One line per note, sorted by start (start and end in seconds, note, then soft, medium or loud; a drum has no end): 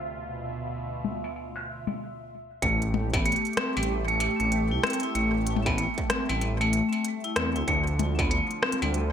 0.00 1.95 D2 medium
0.00 1.95 F4 medium
0.00 1.99 E5 medium
0.10 1.97 B2 medium
1.05 high tom medium
1.24 struck metal medium
1.36 struck metal soft
1.56 struck metal medium
1.87 high tom medium
1.87 struck metal soft
2.62 3.34 A1 loud
2.62 7.64 A3 medium
2.62 2.77 A3 loud
2.62 7.64 G4 medium
2.62 kick medium
2.62 closed hi-hat medium
2.82 closed hi-hat soft
2.94 high tom medium
3.13 3.19 B3 medium
3.13 kick loud
3.13 closed hi-hat soft
3.13 struck metal medium
3.25 3.44 A3 medium
3.25 closed hi-hat medium
3.32 closed hi-hat medium
3.36 closed hi-hat soft
3.45 closed hi-hat soft
3.47 closed hi-hat soft
3.53 3.71 C4 medium
3.53 cross-stick loud
3.53 closed hi-hat soft
3.57 closed hi-hat loud
3.57 high tom medium
3.77 4.29 A1 medium
3.77 3.85 G3 medium
3.77 closed hi-hat soft
3.77 struck metal medium
3.83 closed hi-hat medium
4.08 4.17 A3 loud
4.08 closed hi-hat soft
4.20 4.39 A3 medium
4.20 closed hi-hat loud
4.20 struck metal medium
4.40 4.73 A1 medium
4.40 4.51 A3 medium
4.40 closed hi-hat soft
4.52 closed hi-hat medium
4.71 4.79 C2 medium
4.71 4.80 E4 medium
4.83 4.98 C4 loud
4.83 cross-stick loud
4.83 closed hi-hat soft
4.83 high tom medium
4.87 closed hi-hat soft
4.90 closed hi-hat medium
4.93 closed hi-hat medium
5.00 5.12 E4 medium
5.00 closed hi-hat medium
5.03 closed hi-hat soft
5.15 5.87 A1 loud
5.15 5.29 A3 loud
5.15 closed hi-hat medium
5.47 closed hi-hat loud
5.56 high tom medium
5.66 5.71 B3 medium
5.66 kick loud
5.66 closed hi-hat soft
5.66 struck metal medium
5.78 5.97 A3 medium
5.78 closed hi-hat medium
5.98 kick medium
5.98 closed hi-hat soft
6.10 6.24 C4 loud
6.10 cross-stick loud
6.10 closed hi-hat loud
6.10 high tom medium
6.29 6.82 A1 loud
6.29 6.38 G3 medium
6.29 closed hi-hat soft
6.29 struck metal medium
6.41 closed hi-hat medium
6.41 struck metal soft
6.61 6.70 A3 loud
6.61 closed hi-hat soft
6.61 struck metal medium
6.73 6.91 A3 medium
6.73 closed hi-hat loud
6.93 7.04 A3 medium
6.93 closed hi-hat soft
6.93 struck metal soft
7.04 closed hi-hat medium
7.24 7.33 E4 medium
7.24 closed hi-hat soft
7.36 7.57 E2 loud
7.36 7.50 C4 loud
7.36 cross-stick loud
7.36 closed hi-hat loud
7.56 7.63 D2 medium
7.56 7.64 E4 medium
7.56 closed hi-hat soft
7.68 8.40 D2 loud
7.68 9.12 D3 medium
7.68 9.12 F3 medium
7.68 7.82 A3 loud
7.68 kick medium
7.68 closed hi-hat medium
7.87 closed hi-hat soft
7.99 closed hi-hat medium
7.99 high tom medium
8.19 8.24 B3 medium
8.19 kick loud
8.19 closed hi-hat soft
8.19 struck metal medium
8.31 8.49 A3 medium
8.31 closed hi-hat medium
8.51 closed hi-hat soft
8.62 8.77 C4 loud
8.62 cross-stick loud
8.62 high tom soft
8.72 closed hi-hat medium
8.72 high tom soft
8.82 9.12 D2 medium
8.82 8.91 G3 medium
8.82 closed hi-hat soft
8.82 high tom medium
8.82 struck metal medium
8.94 closed hi-hat medium